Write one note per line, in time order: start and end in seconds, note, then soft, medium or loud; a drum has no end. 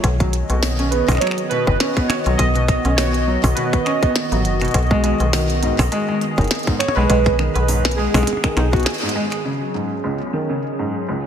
0.00 0.43 B1 loud
0.00 9.45 D#3 medium
0.00 1.46 G#4 medium
0.00 1.93 C#5 medium
0.00 kick loud
0.00 closed hi-hat medium
0.20 0.33 F#3 medium
0.20 kick loud
0.20 closed hi-hat soft
0.33 closed hi-hat medium
0.39 10.73 D#5 medium
0.50 1.02 B1 medium
0.50 0.60 B2 medium
0.50 closed hi-hat soft
0.57 10.52 B3 medium
0.63 snare loud
0.63 open hi-hat medium
0.79 0.91 C#4 loud
0.79 closed hi-hat soft
0.90 1.05 B3 loud
0.90 1.08 B4 medium
0.90 closed hi-hat medium
1.07 1.18 B1 loud
1.07 1.20 D#5 loud
1.07 finger snap soft
1.07 kick loud
1.07 open hi-hat medium
1.07 percussion blips medium
1.12 finger snap soft
1.12 percussion blips medium
1.15 finger snap soft
1.15 percussion blips medium
1.18 1.37 F#3 medium
1.18 1.33 C#5 loud
1.18 finger snap soft
1.18 closed hi-hat medium
1.18 percussion blips soft
1.27 finger snap soft
1.31 6.13 F#4 medium
1.31 finger snap soft
1.38 closed hi-hat soft
1.49 1.64 B2 medium
1.49 2.05 B4 loud
1.49 closed hi-hat soft
1.67 1.77 F#1 medium
1.67 kick loud
1.80 1.96 C#4 loud
1.80 snare loud
1.80 closed hi-hat medium
1.97 2.07 B3 loud
1.97 kick loud
1.97 closed hi-hat soft
2.08 2.36 C#5 loud
2.08 finger snap medium
2.08 closed hi-hat medium
2.08 percussion blips medium
2.26 2.36 B1 medium
2.26 2.38 F#3 medium
2.26 closed hi-hat soft
2.37 2.79 B1 medium
2.37 2.93 D#5 loud
2.37 kick loud
2.37 closed hi-hat medium
2.56 2.66 B2 medium
2.56 closed hi-hat soft
2.68 finger snap soft
2.68 kick loud
2.68 closed hi-hat medium
2.85 3.38 B1 medium
2.85 2.97 C#4 loud
2.85 closed hi-hat soft
2.96 3.11 B3 loud
2.96 3.52 C#5 loud
2.96 snare loud
2.96 open hi-hat medium
3.14 closed hi-hat soft
3.27 3.43 F#3 medium
3.44 3.54 B1 loud
3.44 kick loud
3.44 open hi-hat medium
3.44 percussion blips medium
3.55 3.70 B2 medium
3.55 3.83 B4 medium
3.55 closed hi-hat medium
3.73 kick loud
3.73 closed hi-hat soft
3.85 4.02 C#4 loud
3.85 4.40 D#5 loud
3.85 finger snap soft
3.85 closed hi-hat soft
4.03 4.13 B3 loud
4.03 kick loud
4.03 closed hi-hat soft
4.16 snare loud
4.16 closed hi-hat medium
4.32 4.46 A1 medium
4.32 4.44 F#3 medium
4.32 closed hi-hat soft
4.45 4.68 F#1 medium
4.45 closed hi-hat medium
4.61 4.72 B2 medium
4.61 finger snap soft
4.61 closed hi-hat soft
4.65 closed hi-hat soft
4.68 closed hi-hat soft
4.71 closed hi-hat soft
4.74 5.14 B1 loud
4.74 kick loud
4.74 closed hi-hat medium
4.78 closed hi-hat soft
4.83 closed hi-hat soft
4.87 closed hi-hat soft
4.91 5.02 G#3 loud
4.91 kick loud
5.04 5.17 G#3 loud
5.04 closed hi-hat medium
5.20 5.73 B1 medium
5.20 closed hi-hat soft
5.33 5.49 D#3 medium
5.33 snare loud
5.33 open hi-hat medium
5.50 closed hi-hat soft
5.63 5.76 G#2 medium
5.63 closed hi-hat medium
5.79 5.89 B1 loud
5.79 finger snap medium
5.79 kick loud
5.79 open hi-hat medium
5.79 percussion blips loud
5.92 6.07 G#3 loud
5.92 closed hi-hat medium
6.08 6.19 G#3 loud
6.08 11.27 G#4 medium
6.21 closed hi-hat soft
6.38 6.48 F#1 medium
6.38 6.50 D#3 medium
6.38 kick loud
6.38 closed hi-hat soft
6.41 closed hi-hat soft
6.44 closed hi-hat soft
6.48 snare loud
6.48 closed hi-hat soft
6.51 closed hi-hat medium
6.55 closed hi-hat soft
6.59 closed hi-hat soft
6.63 closed hi-hat soft
6.67 6.78 G#2 medium
6.67 kick loud
6.67 closed hi-hat soft
6.79 6.95 C#5 loud
6.79 finger snap medium
6.79 closed hi-hat medium
6.88 percussion blips medium
6.95 7.07 B1 medium
6.95 7.08 G#3 loud
6.95 7.51 B4 loud
7.10 7.49 B1 loud
7.10 7.23 G#3 loud
7.10 kick loud
7.10 closed hi-hat loud
7.26 kick loud
7.26 closed hi-hat soft
7.39 7.55 D#3 medium
7.39 finger snap soft
7.54 8.08 B1 medium
7.54 7.98 B4 loud
7.54 closed hi-hat soft
7.68 7.82 G#2 medium
7.68 open hi-hat medium
7.85 snare loud
7.85 closed hi-hat soft
7.91 closed hi-hat medium
7.96 8.13 G#3 loud
7.96 8.75 G#4 loud
8.14 8.24 B1 loud
8.14 8.25 G#3 loud
8.14 finger snap medium
8.14 kick loud
8.14 open hi-hat medium
8.14 percussion blips medium
8.18 percussion blips medium
8.23 percussion blips medium
8.27 closed hi-hat loud
8.27 percussion blips soft
8.33 percussion blips soft
8.37 percussion blips soft
8.44 8.56 D#3 medium
8.44 finger snap medium
8.44 kick loud
8.44 closed hi-hat soft
8.57 8.86 B1 loud
8.57 8.65 D#4 loud
8.57 finger snap soft
8.57 closed hi-hat soft
8.72 8.85 B3 medium
8.72 8.84 F#4 medium
8.72 kick loud
8.72 closed hi-hat soft
8.76 closed hi-hat soft
8.80 closed hi-hat soft
8.83 9.28 G#4 medium
8.83 snare loud
8.83 closed hi-hat soft
8.86 closed hi-hat medium
8.90 closed hi-hat soft
8.94 closed hi-hat soft
8.98 closed hi-hat soft
9.03 9.09 G#2 medium
9.09 closed hi-hat medium
9.16 9.24 G#3 loud
9.32 finger snap soft
9.32 closed hi-hat soft
9.45 9.58 C#3 medium
9.45 11.27 F#3 medium
9.53 closed hi-hat soft
9.64 11.27 C#4 medium
9.64 closed hi-hat soft
9.74 9.90 G#2 medium
9.74 closed hi-hat medium
9.88 11.27 C#5 medium
10.04 10.17 C#2 medium
10.04 closed hi-hat medium
10.33 10.49 D#3 medium
10.50 10.60 C#3 medium
10.50 closed hi-hat soft
10.79 10.91 G#2 medium
10.79 closed hi-hat medium
11.08 11.19 C#2 medium
11.08 closed hi-hat medium